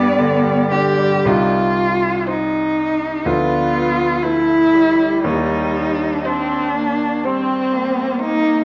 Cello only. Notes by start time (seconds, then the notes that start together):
Already playing: B3
0.71 G4
1.27 F4
2.29 D#4
3.27 F4
4.23 E4
5.24 D#4
6.26 D4
7.24 C4
8.19 D#4